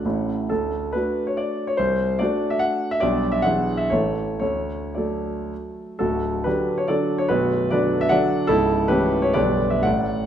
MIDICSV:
0, 0, Header, 1, 2, 480
1, 0, Start_track
1, 0, Key_signature, 2, "major"
1, 0, Tempo, 443459
1, 542, Time_signature, 3, 2, 24, 8
1, 1491, Tempo, 411805
1, 3891, Tempo, 487013
1, 4851, Tempo, 549451
1, 5811, Tempo, 493827
1, 6291, Tempo, 437637
1, 7731, Tempo, 394737
1, 9651, Tempo, 452830
1, 10131, Tempo, 505051
1, 11001, End_track
2, 0, Start_track
2, 0, Title_t, "Grand piano"
2, 0, Program_c, 0, 0
2, 0, Control_c, 0, 64, 127
2, 0, Note_on_c, 0, 78, 65
2, 52, Note_on_c, 0, 57, 33
2, 54, Note_on_c, 0, 33, 43
2, 64, Control_c, 0, 64, 0
2, 64, Note_on_c, 0, 61, 31
2, 64, Note_on_c, 0, 64, 30
2, 288, Note_off_c, 0, 78, 0
2, 294, Control_c, 0, 64, 127
2, 499, Note_off_c, 0, 57, 0
2, 505, Note_off_c, 0, 61, 0
2, 505, Note_off_c, 0, 64, 0
2, 529, Note_off_c, 0, 33, 0
2, 535, Note_on_c, 0, 69, 59
2, 553, Control_c, 0, 64, 0
2, 554, Note_on_c, 0, 38, 43
2, 751, Control_c, 0, 64, 127
2, 1001, Note_on_c, 0, 71, 61
2, 1004, Note_off_c, 0, 38, 0
2, 1009, Note_off_c, 0, 69, 0
2, 1021, Control_c, 0, 64, 0
2, 1024, Note_on_c, 0, 57, 36
2, 1029, Note_on_c, 0, 62, 33
2, 1035, Note_on_c, 0, 66, 36
2, 1369, Note_off_c, 0, 71, 0
2, 1373, Note_on_c, 0, 73, 55
2, 1483, Note_on_c, 0, 74, 64
2, 1490, Note_off_c, 0, 73, 0
2, 1836, Note_on_c, 0, 73, 64
2, 1844, Note_off_c, 0, 74, 0
2, 1922, Note_off_c, 0, 57, 0
2, 1924, Note_off_c, 0, 62, 0
2, 1927, Note_off_c, 0, 66, 0
2, 1952, Note_on_c, 0, 72, 73
2, 1956, Note_off_c, 0, 73, 0
2, 1970, Note_on_c, 0, 36, 51
2, 2141, Control_c, 0, 64, 127
2, 2432, Note_off_c, 0, 36, 0
2, 2435, Note_on_c, 0, 74, 73
2, 2437, Note_off_c, 0, 72, 0
2, 2453, Note_on_c, 0, 57, 39
2, 2460, Control_c, 0, 64, 0
2, 2461, Note_on_c, 0, 62, 41
2, 2465, Note_on_c, 0, 66, 44
2, 2803, Note_on_c, 0, 76, 72
2, 2812, Note_off_c, 0, 74, 0
2, 2909, Note_on_c, 0, 78, 81
2, 2930, Note_off_c, 0, 76, 0
2, 3275, Note_off_c, 0, 78, 0
2, 3280, Note_on_c, 0, 76, 78
2, 3361, Note_off_c, 0, 57, 0
2, 3365, Note_off_c, 0, 62, 0
2, 3367, Note_off_c, 0, 66, 0
2, 3386, Note_on_c, 0, 74, 83
2, 3398, Note_off_c, 0, 76, 0
2, 3410, Note_on_c, 0, 35, 57
2, 3410, Note_on_c, 0, 55, 45
2, 3420, Note_on_c, 0, 62, 42
2, 3427, Note_on_c, 0, 67, 41
2, 3618, Control_c, 0, 64, 127
2, 3751, Note_on_c, 0, 76, 72
2, 3752, Note_off_c, 0, 74, 0
2, 3848, Note_off_c, 0, 55, 0
2, 3853, Note_off_c, 0, 62, 0
2, 3856, Note_off_c, 0, 67, 0
2, 3876, Note_on_c, 0, 78, 79
2, 3880, Note_off_c, 0, 35, 0
2, 3886, Note_off_c, 0, 76, 0
2, 3893, Note_on_c, 0, 52, 41
2, 3897, Note_on_c, 0, 35, 56
2, 3904, Note_on_c, 0, 62, 36
2, 3905, Control_c, 0, 64, 0
2, 3906, Note_on_c, 0, 68, 37
2, 4112, Control_c, 0, 64, 127
2, 4223, Note_on_c, 0, 76, 68
2, 4230, Note_off_c, 0, 78, 0
2, 4316, Note_off_c, 0, 52, 0
2, 4321, Note_off_c, 0, 62, 0
2, 4322, Note_off_c, 0, 68, 0
2, 4343, Note_off_c, 0, 35, 0
2, 4347, Note_off_c, 0, 76, 0
2, 4348, Note_on_c, 0, 73, 64
2, 4364, Note_on_c, 0, 33, 48
2, 4365, Note_on_c, 0, 52, 35
2, 4366, Control_c, 0, 64, 0
2, 4369, Note_on_c, 0, 57, 36
2, 4379, Note_on_c, 0, 69, 37
2, 4570, Control_c, 0, 64, 127
2, 4817, Note_off_c, 0, 52, 0
2, 4819, Note_off_c, 0, 57, 0
2, 4822, Note_off_c, 0, 73, 0
2, 4824, Note_off_c, 0, 69, 0
2, 4836, Note_on_c, 0, 73, 63
2, 4841, Note_off_c, 0, 33, 0
2, 4855, Note_on_c, 0, 38, 43
2, 4862, Control_c, 0, 64, 0
2, 5083, Control_c, 0, 64, 127
2, 5318, Note_on_c, 0, 74, 41
2, 5323, Note_off_c, 0, 38, 0
2, 5329, Note_off_c, 0, 73, 0
2, 5337, Note_on_c, 0, 54, 27
2, 5340, Note_on_c, 0, 57, 29
2, 5344, Note_on_c, 0, 69, 33
2, 5802, Note_off_c, 0, 74, 0
2, 5826, Control_c, 0, 64, 0
2, 6253, Note_off_c, 0, 54, 0
2, 6254, Note_off_c, 0, 57, 0
2, 6257, Note_off_c, 0, 69, 0
2, 6276, Note_on_c, 0, 69, 68
2, 6289, Note_on_c, 0, 66, 51
2, 6292, Note_on_c, 0, 38, 50
2, 6296, Note_on_c, 0, 26, 45
2, 6477, Control_c, 0, 64, 127
2, 6753, Note_off_c, 0, 66, 0
2, 6770, Note_on_c, 0, 71, 68
2, 6774, Note_off_c, 0, 38, 0
2, 6776, Note_off_c, 0, 26, 0
2, 6780, Note_off_c, 0, 69, 0
2, 6788, Note_on_c, 0, 67, 46
2, 6799, Note_on_c, 0, 50, 40
2, 6801, Note_on_c, 0, 54, 39
2, 6805, Control_c, 0, 64, 0
2, 6807, Note_on_c, 0, 62, 38
2, 7131, Note_off_c, 0, 67, 0
2, 7139, Note_on_c, 0, 73, 62
2, 7148, Note_off_c, 0, 71, 0
2, 7238, Note_off_c, 0, 50, 0
2, 7239, Note_off_c, 0, 54, 0
2, 7242, Note_off_c, 0, 62, 0
2, 7250, Note_on_c, 0, 74, 69
2, 7260, Note_on_c, 0, 69, 55
2, 7268, Note_off_c, 0, 73, 0
2, 7272, Note_on_c, 0, 50, 39
2, 7273, Note_on_c, 0, 54, 40
2, 7277, Note_on_c, 0, 62, 43
2, 7586, Note_on_c, 0, 73, 69
2, 7590, Note_off_c, 0, 69, 0
2, 7609, Note_off_c, 0, 74, 0
2, 7685, Note_off_c, 0, 50, 0
2, 7686, Note_off_c, 0, 54, 0
2, 7688, Note_off_c, 0, 62, 0
2, 7697, Note_on_c, 0, 71, 74
2, 7709, Note_on_c, 0, 66, 59
2, 7713, Note_off_c, 0, 73, 0
2, 7720, Note_on_c, 0, 23, 51
2, 7720, Note_on_c, 0, 35, 55
2, 7933, Control_c, 0, 64, 127
2, 8174, Note_off_c, 0, 66, 0
2, 8199, Note_off_c, 0, 71, 0
2, 8200, Note_off_c, 0, 23, 0
2, 8200, Note_off_c, 0, 35, 0
2, 8205, Note_on_c, 0, 74, 74
2, 8217, Note_on_c, 0, 71, 59
2, 8226, Note_on_c, 0, 50, 44
2, 8229, Note_on_c, 0, 54, 43
2, 8235, Note_on_c, 0, 62, 46
2, 8561, Note_off_c, 0, 71, 0
2, 8573, Note_on_c, 0, 76, 80
2, 8581, Note_off_c, 0, 74, 0
2, 8660, Note_off_c, 0, 50, 0
2, 8662, Note_off_c, 0, 54, 0
2, 8665, Note_off_c, 0, 62, 0
2, 8674, Note_on_c, 0, 78, 86
2, 8689, Note_on_c, 0, 74, 68
2, 8698, Note_off_c, 0, 76, 0
2, 8700, Note_on_c, 0, 50, 47
2, 8704, Note_on_c, 0, 54, 49
2, 8706, Note_on_c, 0, 62, 50
2, 8717, Control_c, 0, 64, 0
2, 9113, Note_off_c, 0, 50, 0
2, 9115, Note_off_c, 0, 54, 0
2, 9116, Note_off_c, 0, 62, 0
2, 9121, Note_off_c, 0, 74, 0
2, 9138, Note_on_c, 0, 69, 90
2, 9146, Note_off_c, 0, 78, 0
2, 9155, Note_on_c, 0, 37, 64
2, 9156, Note_on_c, 0, 64, 64
2, 9162, Note_on_c, 0, 25, 60
2, 9365, Control_c, 0, 64, 127
2, 9613, Note_off_c, 0, 64, 0
2, 9633, Note_off_c, 0, 37, 0
2, 9633, Note_on_c, 0, 71, 78
2, 9636, Note_off_c, 0, 25, 0
2, 9639, Note_off_c, 0, 69, 0
2, 9639, Note_on_c, 0, 67, 65
2, 9654, Note_on_c, 0, 52, 46
2, 9660, Note_on_c, 0, 61, 52
2, 9662, Note_on_c, 0, 57, 47
2, 9977, Note_off_c, 0, 67, 0
2, 9997, Note_on_c, 0, 73, 75
2, 10000, Note_off_c, 0, 71, 0
2, 10090, Note_off_c, 0, 52, 0
2, 10093, Note_off_c, 0, 61, 0
2, 10094, Note_off_c, 0, 57, 0
2, 10117, Note_on_c, 0, 74, 82
2, 10124, Note_on_c, 0, 71, 63
2, 10126, Note_off_c, 0, 73, 0
2, 10132, Note_on_c, 0, 35, 57
2, 10132, Note_on_c, 0, 50, 44
2, 10137, Note_on_c, 0, 23, 51
2, 10138, Note_on_c, 0, 55, 43
2, 10140, Control_c, 0, 64, 0
2, 10145, Note_on_c, 0, 62, 44
2, 10355, Control_c, 0, 64, 127
2, 10453, Note_off_c, 0, 71, 0
2, 10468, Note_on_c, 0, 76, 69
2, 10475, Note_off_c, 0, 74, 0
2, 10563, Note_off_c, 0, 50, 0
2, 10566, Note_off_c, 0, 55, 0
2, 10570, Note_off_c, 0, 62, 0
2, 10586, Note_on_c, 0, 78, 75
2, 10587, Note_off_c, 0, 35, 0
2, 10590, Note_off_c, 0, 23, 0
2, 10594, Note_off_c, 0, 76, 0
2, 10603, Note_on_c, 0, 74, 57
2, 10605, Note_on_c, 0, 33, 57
2, 10608, Note_on_c, 0, 45, 50
2, 10613, Control_c, 0, 64, 0
2, 10784, Control_c, 0, 64, 127
2, 11001, Note_off_c, 0, 33, 0
2, 11001, Note_off_c, 0, 45, 0
2, 11001, Note_off_c, 0, 74, 0
2, 11001, Note_off_c, 0, 78, 0
2, 11001, End_track
0, 0, End_of_file